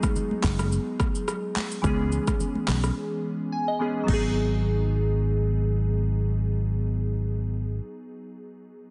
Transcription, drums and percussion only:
0.03 kick, cross-stick, high conga, shaker
0.16 low conga, shaker
0.31 high conga
0.44 kick, cross-stick, clap, open hi-hat, high conga, low conga, shaker
0.59 cross-stick, shaker
0.72 shaker
1.00 kick, cross-stick, high conga, shaker
1.15 shaker
1.28 cross-stick, shaker
1.56 clap, open hi-hat, high conga, shaker
1.71 shaker
1.84 kick, cross-stick, low conga, shaker
1.99 high conga
2.12 shaker
2.27 kick, cross-stick, high conga, shaker
2.40 low conga, shaker
2.55 high conga
2.68 cross-stick, clap, open hi-hat, high conga, low conga, shaker
2.84 cross-stick, shaker
4.08 kick, crash, high conga

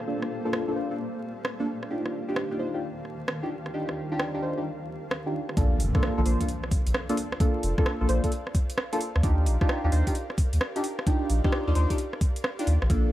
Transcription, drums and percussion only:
0.22 cross-stick
0.53 cross-stick
1.45 cross-stick
1.83 cross-stick
2.06 cross-stick
2.36 cross-stick
3.05 cross-stick
3.28 cross-stick
3.66 cross-stick
3.89 cross-stick
4.20 cross-stick
5.11 cross-stick
5.49 cross-stick
5.57 kick, closed hi-hat
5.80 open hi-hat
5.95 kick, cross-stick
6.03 cross-stick
6.26 open hi-hat
6.41 kick, closed hi-hat
6.49 closed hi-hat
6.64 cross-stick
6.71 kick, open hi-hat
6.87 closed hi-hat
6.94 cross-stick
7.09 closed hi-hat
7.17 open hi-hat
7.32 cross-stick
7.40 kick, closed hi-hat
7.63 open hi-hat
7.78 kick, cross-stick
7.86 cross-stick
8.09 open hi-hat
8.24 kick, closed hi-hat
8.32 closed hi-hat
8.47 cross-stick
8.55 kick, open hi-hat
8.70 closed hi-hat
8.78 cross-stick
8.93 closed hi-hat
9.01 open hi-hat
9.16 cross-stick
9.23 kick, closed hi-hat
9.46 open hi-hat
9.61 kick, cross-stick
9.69 cross-stick
9.92 open hi-hat
10.07 kick, closed hi-hat
10.15 closed hi-hat
10.30 cross-stick
10.38 kick, open hi-hat
10.53 closed hi-hat
10.61 cross-stick
10.76 closed hi-hat
10.84 open hi-hat
10.99 cross-stick
11.07 kick, closed hi-hat
11.30 open hi-hat
11.44 kick, cross-stick
11.52 cross-stick
11.75 open hi-hat
11.90 kick, closed hi-hat
11.98 closed hi-hat
12.13 cross-stick
12.21 kick, open hi-hat
12.36 closed hi-hat
12.44 cross-stick
12.59 closed hi-hat
12.67 open hi-hat
12.82 cross-stick
12.90 kick, closed hi-hat

